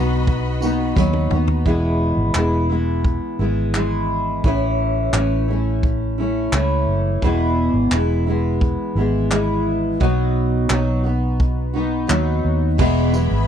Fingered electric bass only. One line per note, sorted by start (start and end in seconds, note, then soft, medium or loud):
0.00 0.93 B1 loud
0.97 1.29 D#2 loud
1.31 1.63 D#2 medium
1.66 2.14 E1 medium
2.17 2.33 G#1 medium
2.35 3.18 E1 medium
3.39 4.40 G#1 medium
4.44 5.10 A1 medium
5.13 6.49 A1 medium
6.52 6.85 C#2 medium
6.87 7.19 F#1 medium
7.22 7.71 E1 loud
7.74 7.90 G#1 medium
7.91 8.75 E1 medium
8.95 9.96 G#1 medium
10.01 10.67 B1 medium
10.70 12.06 B1 loud
12.10 12.42 D#2 medium
12.45 12.77 D#2 medium
12.79 13.27 E1 loud
13.31 13.47 G#1 medium